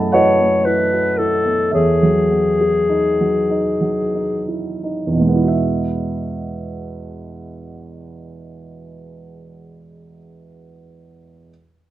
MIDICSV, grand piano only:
0, 0, Header, 1, 2, 480
1, 0, Start_track
1, 0, Key_signature, 4, "major"
1, 0, Tempo, 1020408
1, 304, Tempo, 1086957
1, 784, Time_signature, 6, 3, 24, 8
1, 784, Tempo, 1162791
1, 1264, Tempo, 1239669
1, 1744, Tempo, 1366743
1, 2224, Tempo, 1284797
1, 3664, Tempo, 1229508
1, 4658, End_track
2, 0, Start_track
2, 0, Title_t, "Grand piano"
2, 0, Program_c, 0, 0
2, 0, Control_c, 0, 64, 127
2, 0, Note_on_c, 0, 42, 44
2, 0, Note_on_c, 0, 57, 32
2, 0, Note_on_c, 0, 59, 34
2, 0, Note_on_c, 0, 64, 37
2, 0, Note_on_c, 0, 68, 38
2, 0, Note_on_c, 0, 69, 50
2, 0, Note_on_c, 0, 71, 48
2, 0, Note_on_c, 0, 75, 50
2, 0, Note_on_c, 0, 76, 53
2, 0, Note_on_c, 0, 78, 47
2, 0, Note_on_c, 0, 80, 47
2, 0, Note_on_c, 0, 81, 61
2, 0, Note_on_c, 0, 83, 67
2, 47, Note_off_c, 0, 69, 0
2, 47, Note_off_c, 0, 78, 0
2, 48, Note_off_c, 0, 75, 0
2, 57, Note_on_c, 0, 78, 60
2, 61, Note_off_c, 0, 71, 0
2, 61, Note_on_c, 0, 71, 48
2, 62, Note_off_c, 0, 81, 0
2, 63, Note_on_c, 0, 66, 43
2, 64, Note_on_c, 0, 75, 47
2, 69, Note_off_c, 0, 64, 0
2, 69, Note_on_c, 0, 64, 39
2, 134, Note_off_c, 0, 57, 0
2, 192, Note_on_c, 0, 57, 31
2, 259, Note_off_c, 0, 64, 0
2, 313, Note_on_c, 0, 64, 31
2, 378, Note_off_c, 0, 57, 0
2, 420, Note_off_c, 0, 66, 0
2, 427, Note_on_c, 0, 66, 27
2, 496, Note_off_c, 0, 64, 0
2, 542, Note_off_c, 0, 66, 0
2, 545, Note_on_c, 0, 64, 32
2, 660, Note_off_c, 0, 59, 0
2, 660, Note_on_c, 0, 59, 29
2, 737, Note_off_c, 0, 64, 0
2, 766, Note_off_c, 0, 71, 0
2, 767, Note_off_c, 0, 75, 0
2, 769, Note_off_c, 0, 42, 0
2, 774, Note_off_c, 0, 76, 0
2, 774, Note_on_c, 0, 76, 43
2, 780, Note_on_c, 0, 69, 33
2, 781, Note_off_c, 0, 78, 0
2, 781, Note_on_c, 0, 73, 31
2, 783, Note_on_c, 0, 40, 35
2, 784, Note_off_c, 0, 59, 0
2, 793, Control_c, 0, 64, 0
2, 796, Note_off_c, 0, 83, 0
2, 797, Note_off_c, 0, 80, 0
2, 798, Note_off_c, 0, 68, 0
2, 895, Control_c, 0, 64, 127
2, 905, Note_on_c, 0, 54, 28
2, 1022, Note_on_c, 0, 59, 27
2, 1095, Note_off_c, 0, 54, 0
2, 1144, Note_on_c, 0, 68, 30
2, 1215, Note_off_c, 0, 59, 0
2, 1260, Note_on_c, 0, 63, 31
2, 1335, Note_off_c, 0, 68, 0
2, 1383, Note_on_c, 0, 54, 26
2, 1448, Note_off_c, 0, 63, 0
2, 1480, Note_off_c, 0, 69, 0
2, 1480, Note_off_c, 0, 73, 0
2, 1492, Note_off_c, 0, 76, 0
2, 1498, Note_on_c, 0, 63, 29
2, 1570, Note_off_c, 0, 54, 0
2, 1617, Note_on_c, 0, 54, 27
2, 1693, Note_off_c, 0, 63, 0
2, 1746, Note_on_c, 0, 63, 28
2, 1815, Note_off_c, 0, 54, 0
2, 1866, Note_on_c, 0, 64, 24
2, 1939, Note_off_c, 0, 63, 0
2, 1989, Note_off_c, 0, 64, 0
2, 1989, Note_on_c, 0, 63, 30
2, 2066, Note_off_c, 0, 40, 0
2, 2071, Note_on_c, 0, 40, 40
2, 2095, Note_on_c, 0, 47, 34
2, 2112, Note_on_c, 0, 59, 24
2, 2122, Note_on_c, 0, 56, 35
2, 2142, Note_off_c, 0, 59, 0
2, 2147, Note_on_c, 0, 59, 34
2, 2173, Note_on_c, 0, 64, 33
2, 2180, Note_off_c, 0, 63, 0
2, 2199, Note_on_c, 0, 66, 34
2, 2216, Note_on_c, 0, 76, 40
2, 2234, Control_c, 0, 64, 0
2, 2341, Control_c, 0, 64, 127
2, 3825, Note_off_c, 0, 40, 0
2, 3851, Note_off_c, 0, 47, 0
2, 3881, Note_off_c, 0, 56, 0
2, 3909, Note_off_c, 0, 59, 0
2, 3938, Note_off_c, 0, 64, 0
2, 3967, Note_off_c, 0, 66, 0
2, 3985, Note_off_c, 0, 76, 0
2, 4502, Control_c, 0, 64, 0
2, 4658, End_track
0, 0, End_of_file